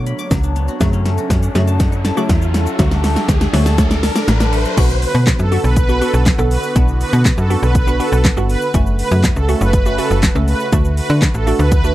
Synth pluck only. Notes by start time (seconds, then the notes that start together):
Already playing: D3 F#3 B3 F#4
0.81 C#3 F#3 A3 F#4
1.55 C#3 F#3 A3 F#4
2.17 C#3 F#3 A3 F#4
2.79 D3 F#3 A3 F#4
3.53 D3 F#3 A3 F#4
3.78 D3 F#3 A3 F#4
4.77 B3 D4 F#4
5.52 B3 D4 F#4
5.89 B3 D4 F#4
6.01 B3 D4 F#4
6.38 B3 D4 A4
6.76 B3 D4 E4
7.50 B3 D4 F#4
7.87 B3 D4 F#4
8.00 B3 D4 F#4
8.37 B3 D4 F#4
8.74 A3 C#4 F#4
9.48 A3 C#4 F#4
9.86 A3 C#4 F#4
9.98 A3 C#4 F#4
10.35 A3 C#4 A4
10.72 A3 D4 F#4
11.47 A3 D4 F#4
11.84 A3 D4 F#4